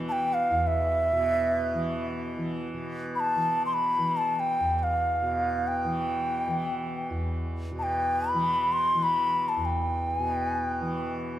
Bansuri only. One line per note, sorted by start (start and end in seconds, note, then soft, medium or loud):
0.09 0.35 G5 medium
0.09 0.13 A5 medium
0.34 0.69 F5 medium
0.67 2.13 E5 medium
3.15 3.21 B5 medium
3.20 3.63 A5 medium
3.66 3.75 C6 medium
3.73 4.18 B5 medium
4.17 4.36 A5 medium
4.36 4.79 G5 medium
4.36 4.40 A5 medium
4.79 4.84 G5 medium
4.83 5.69 F5 medium
5.68 7.11 G5 medium
7.79 7.84 A5 medium
7.83 8.31 G5 medium
8.29 8.74 B5 medium
8.73 9.04 C6 medium
9.03 9.50 B5 loud
9.49 9.67 A5 medium
9.65 10.19 G5 medium
10.19 10.33 G#5 medium
10.33 10.49 G5 medium
10.49 10.63 G#5 medium
10.63 11.16 G5 medium